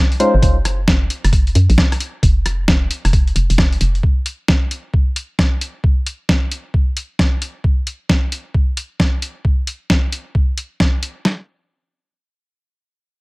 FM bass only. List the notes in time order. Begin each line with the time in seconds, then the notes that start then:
0.34 G#1
0.42 F#1
1.24 F#1
1.55 F#2
1.70 A#1
2.23 F1
3.05 F1
3.36 F1
3.50 F1
3.81 F1